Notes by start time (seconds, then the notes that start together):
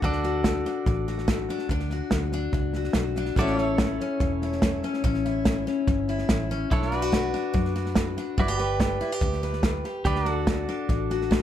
0.02 D2 D3 D4 F#4 A4 D5, kick, snare
0.13 snare
0.23 F#4, snare
0.44 A3, kick, snare, hi-hat pedal
0.65 D4, snare
0.86 A1 A2, kick, snare
1.08 F#4, snare
1.18 snare
1.28 A3, kick, snare, hi-hat pedal
1.49 D4, snare
1.58 snare
1.69 D2 D3 D4, kick, snare
1.80 snare
1.90 F#4, snare
2.11 D2 A3, kick, snare, hi-hat pedal
2.32 D4, snare
2.53 C#2 A2, kick, snare
2.73 F#4, snare
2.84 snare
2.93 B1 A3, kick, snare, hi-hat pedal
3.15 D4, snare
3.26 snare
3.36 A1 A2 A3 C#4 F#4 A4 D5, kick, snare
3.40 E4 C#5
3.47 snare
3.58 E4 C#5, snare
3.64 E4
3.78 A3, kick, snare, hi-hat pedal
4.00 C#4, snare
4.20 E1 E3, kick, snare
4.42 E4, snare
4.52 snare
4.62 A3, kick, snare, hi-hat pedal
4.83 C#4, snare
4.94 snare
5.04 A1 A2 C#4, kick, snare
5.14 snare
5.25 E4, snare
5.45 A3, kick, snare, hi-hat pedal
5.67 C#4, snare
5.87 G1 E3, kick, snare
6.08 E4, snare
6.18 snare
6.29 A1 A3, kick, snare, hi-hat pedal
6.51 C#4, snare
6.71 B1 B2 D4 E4 A4 C#5, kick, snare
6.82 snare
6.92 E4 D5, snare
6.97 F#4 B4
7.02 F#4
7.12 B3, kick, snare, hi-hat pedal
7.34 D4, snare
7.54 F#2 F#3, kick, snare
7.65 snare
7.76 F#4, snare
7.86 snare
7.95 B3, kick, snare, hi-hat pedal
8.17 D4, snare
8.38 G1 G3 E4 F#4 B4 D5, kick, snare
8.48 G4, snare
8.59 G4 B4, snare
8.80 D4, kick, snare, hi-hat pedal
9.01 E4, snare
9.12 G4
9.21 D2 D3, kick, snare
9.33 snare
9.43 B4, snare
9.53 snare
9.63 D4, kick, snare, hi-hat pedal
9.84 G4, snare
10.05 D2 D3 D4 G4 B4 D5, kick, snare
10.16 snare
10.25 F#4, snare
10.32 A4
10.47 A3, kick, snare, hi-hat pedal
10.68 D4, snare
10.89 A1 A2, kick, snare
11.10 F#4, snare
11.21 snare
11.31 A3, kick, snare, hi-hat pedal